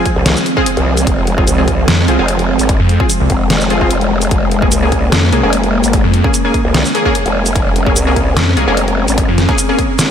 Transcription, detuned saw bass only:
1.88 F2
2.08 C2
2.80 F2
3.20 C2
5.12 F2
5.33 C2
6.04 F2
8.37 F2
8.57 C2
9.28 F2

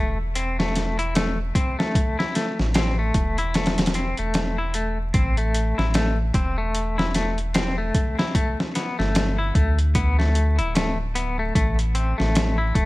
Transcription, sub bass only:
Already playing: E1
2.59 A1
3.15 E1
4.18 E1
5.15 A1
5.78 A1
6.35 E1
8.99 G1
9.56 D2
10.59 D1
11.56 A1
12.20 A1
12.76 E1

